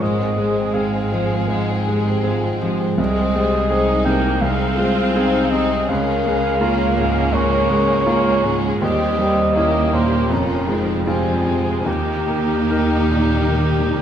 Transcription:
Already playing: G#3
0.00 G#1 G#2 G#3 G#4 C5 D#5
0.20 C4
0.37 G#3
0.58 C4
0.74 G#3 C4 G#4 F5
0.95 C4
1.12 F3 G#3
1.31 C4
1.48 G#2 G#3 G#4
1.70 C4
1.87 G#3 G4
2.07 C4
2.24 G#3 C4 F4 G#4
2.44 C4
2.61 F3 G#3 G4
2.80 C4
2.98 C2 G#3 C4 G#4 D#5
3.35 G3 G#3
3.70 G#3 C4 D#4 G#4 C5
4.05 C3 A#3 A#4 G5
4.41 C2 C4 D#4 G#4 F5
4.79 G#3 F4 C5
5.15 C4 D#4 G#4
5.50 C3 D#4 D#5
5.88 C#2 G#3 C#4 A#4 F5
6.24 G#3
6.60 A#3 C#4 F4 G#4
6.96 G#2 C#4 G#4
7.32 C#2 A#4 C#5
7.70 G#3 A#4
8.06 A#3 F4 G#4
8.44 G#2 G#3
8.80 D#2 D#3 G3 C4 G4 D#5
9.18 G3 C5
9.55 A#3 C#4 E4 G4 A#4
9.93 A#2 G4 C5
10.30 F1 F2 F3 C#4 F4 A#4
10.67 G#3 C4 D#4
11.07 G3 C4 F4 G#4
11.46 C3 G#3
11.85 D#2 D#3 A#3 D#4 G4
11.96 D#3
12.14 D#3
12.23 D#3
12.28 D#3 A#3
12.39 D#3
12.47 D#3
12.63 D#3
12.70 D#3 D#4 A#4
12.79 D#3
12.96 D#3
13.04 D#3
13.11 A#2 D#3
13.21 D#3
13.29 D#3
13.38 D#3
13.47 D#3
13.52 D#3 A#3
13.63 D#3
13.72 D#3
13.80 D#3
13.89 D#3
13.93 A#2 D#3

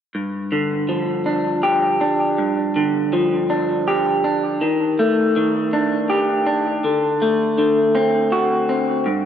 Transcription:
0.15 G2
0.52 D3
0.89 F3
1.26 D4
1.63 G4
2.01 D4
2.38 G2
2.76 D3
3.13 F3
3.50 D4
3.88 G4
4.24 D4
4.61 D#3
4.99 A3
5.36 D#3
5.73 D4
6.10 G4
6.47 D4
6.84 D3
7.22 A3
7.58 D3
7.95 C4
8.32 F#4
8.69 C4
9.06 G2

